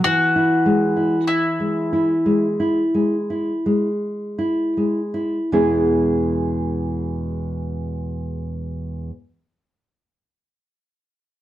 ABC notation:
X:1
M:4/4
L:1/16
Q:1/4=41
K:E
V:1 name="Mandolin"
F4 E8- E2 z2 | z16 |]
V:2 name="Nylon-string guitar"
E, E G, E2 G, E G, E G, E G,2 E G, E | [E,,B,,G,B,EG]16 |]